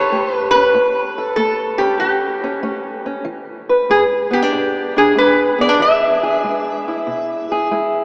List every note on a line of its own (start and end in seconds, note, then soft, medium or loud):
0.00 0.11 G4 medium
0.00 0.73 A4 medium
0.00 0.33 C#5 medium
0.12 0.71 A3 medium
0.12 0.73 G4 medium
0.33 0.49 B4 medium
0.51 1.33 B4 loud
0.55 0.73 C#4 soft
0.74 1.34 A2 medium
1.18 3.25 A4 medium
1.36 1.97 A3 medium
1.36 1.81 A4 medium
1.78 2.42 C#4 medium
1.78 1.99 G4 medium
2.00 2.60 E3 medium
2.00 3.02 G4 medium
2.44 2.62 C#4 medium
2.63 3.23 A3 medium
2.63 3.05 C#4 medium
3.06 3.25 C#4 medium
3.25 3.85 E3 medium
3.69 6.23 B4 medium
3.89 4.49 G#3 medium
3.89 4.02 G#4 medium
4.31 4.42 B3 medium
4.31 4.93 G4 medium
4.42 4.95 D4 soft
4.52 5.12 B2 medium
4.96 5.16 D4 medium
4.96 5.18 G#4 medium
5.16 5.76 G#3 medium
5.16 5.58 D4 medium
5.16 5.57 B4 medium
5.58 5.69 B3 medium
5.58 5.82 D5 medium
5.69 5.80 D4 medium
5.79 6.39 E3 medium
5.79 7.67 E5 loud
6.23 7.50 G#4 medium
6.44 7.03 G#3 medium
6.88 7.70 E4 medium
7.07 7.66 B2 medium
7.52 8.04 G#4 medium
7.71 8.04 G#3 medium
7.71 8.04 E4 medium